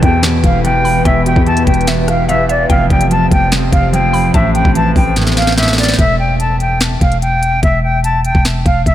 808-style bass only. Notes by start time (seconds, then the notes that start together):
0.03 E2
0.44 E1
1.05 E1
1.36 E2
1.67 E1
2.70 F1
2.90 F1
3.31 F1
3.73 F1
4.34 A1
4.65 A1
4.96 A1
5.99 E1
7.01 E1
7.63 E1
8.35 E1
8.66 E1
8.86 E1